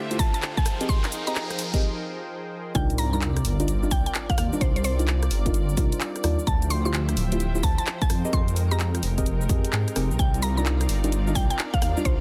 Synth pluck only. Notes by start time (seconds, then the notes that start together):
0.19 A5
0.34 A5
0.57 A5
0.89 C6
1.27 A#5
2.75 G5
2.98 A#5
3.13 A#5
3.91 G5
4.06 G5
4.30 F5
4.38 F5
4.61 C5
4.76 C5
4.84 C5
6.47 A5
6.70 C6
6.85 C6
7.63 A5
7.78 A5
8.02 A5
8.33 C6
8.71 A#5
10.19 G5
10.42 A#5
10.57 A#5
11.35 G5
11.50 G5
11.74 F5
11.82 F5
12.05 C5